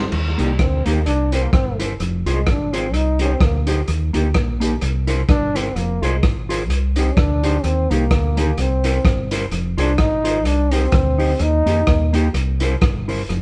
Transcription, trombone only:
0, 0, Header, 1, 2, 480
1, 0, Start_track
1, 0, Tempo, 470588
1, 119, Time_signature, 4, 2, 24, 8
1, 13687, End_track
2, 0, Start_track
2, 0, Title_t, "Trombone"
2, 0, Program_c, 0, 57
2, 399, Note_on_c, 0, 55, 80
2, 596, Note_on_c, 0, 60, 88
2, 611, Note_off_c, 0, 55, 0
2, 863, Note_on_c, 0, 58, 87
2, 878, Note_off_c, 0, 60, 0
2, 1070, Note_off_c, 0, 58, 0
2, 1076, Note_on_c, 0, 62, 116
2, 1351, Note_on_c, 0, 60, 99
2, 1366, Note_off_c, 0, 62, 0
2, 1459, Note_on_c, 0, 58, 91
2, 1475, Note_off_c, 0, 60, 0
2, 1557, Note_off_c, 0, 58, 0
2, 1563, Note_on_c, 0, 60, 96
2, 1812, Note_off_c, 0, 60, 0
2, 2340, Note_on_c, 0, 56, 83
2, 2552, Note_on_c, 0, 62, 95
2, 2567, Note_off_c, 0, 56, 0
2, 2806, Note_on_c, 0, 60, 96
2, 2822, Note_off_c, 0, 62, 0
2, 3005, Note_on_c, 0, 63, 110
2, 3020, Note_off_c, 0, 60, 0
2, 3271, Note_off_c, 0, 63, 0
2, 3281, Note_on_c, 0, 61, 93
2, 3392, Note_on_c, 0, 60, 94
2, 3407, Note_off_c, 0, 61, 0
2, 3489, Note_off_c, 0, 60, 0
2, 3503, Note_on_c, 0, 58, 84
2, 3742, Note_off_c, 0, 58, 0
2, 5401, Note_on_c, 0, 62, 119
2, 5670, Note_on_c, 0, 60, 99
2, 5685, Note_off_c, 0, 62, 0
2, 5882, Note_on_c, 0, 58, 101
2, 5898, Note_off_c, 0, 60, 0
2, 6159, Note_on_c, 0, 56, 79
2, 6174, Note_off_c, 0, 58, 0
2, 6362, Note_off_c, 0, 56, 0
2, 7114, Note_on_c, 0, 60, 94
2, 7262, Note_on_c, 0, 61, 85
2, 7277, Note_off_c, 0, 60, 0
2, 7311, Note_on_c, 0, 62, 114
2, 7326, Note_off_c, 0, 61, 0
2, 7782, Note_on_c, 0, 60, 109
2, 7797, Note_off_c, 0, 62, 0
2, 8062, Note_on_c, 0, 58, 95
2, 8077, Note_off_c, 0, 60, 0
2, 8770, Note_on_c, 0, 60, 100
2, 8785, Note_off_c, 0, 58, 0
2, 9509, Note_off_c, 0, 60, 0
2, 9985, Note_on_c, 0, 62, 102
2, 10186, Note_on_c, 0, 63, 112
2, 10201, Note_off_c, 0, 62, 0
2, 10666, Note_on_c, 0, 62, 110
2, 10682, Note_off_c, 0, 63, 0
2, 10940, Note_on_c, 0, 60, 95
2, 10955, Note_off_c, 0, 62, 0
2, 11647, Note_on_c, 0, 63, 112
2, 11662, Note_off_c, 0, 60, 0
2, 12391, Note_off_c, 0, 63, 0
2, 13687, End_track
0, 0, End_of_file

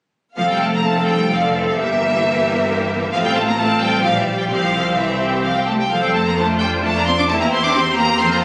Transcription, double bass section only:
0, 0, Header, 1, 2, 480
1, 0, Start_track
1, 0, Key_signature, -1, "major"
1, 0, Tempo, 458365
1, 387, Time_signature, 3, 2, 24, 8
1, 4219, Tempo, 469116
1, 7099, Tempo, 451807
1, 8801, End_track
2, 0, Start_track
2, 0, Title_t, "Double bass section"
2, 0, Program_c, 0, 48
2, 391, Note_on_c, 0, 29, 52
2, 1800, Note_off_c, 0, 29, 0
2, 1850, Note_on_c, 0, 31, 54
2, 3267, Note_off_c, 0, 31, 0
2, 3269, Note_on_c, 0, 33, 63
2, 4179, Note_off_c, 0, 33, 0
2, 4218, Note_on_c, 0, 34, 61
2, 4689, Note_off_c, 0, 34, 0
2, 4701, Note_on_c, 0, 36, 54
2, 5939, Note_off_c, 0, 36, 0
2, 6141, Note_on_c, 0, 41, 56
2, 7055, Note_off_c, 0, 41, 0
2, 7097, Note_on_c, 0, 41, 61
2, 7572, Note_off_c, 0, 41, 0
2, 7582, Note_on_c, 0, 40, 69
2, 8538, Note_off_c, 0, 40, 0
2, 8538, Note_on_c, 0, 41, 67
2, 8801, Note_off_c, 0, 41, 0
2, 8801, End_track
0, 0, End_of_file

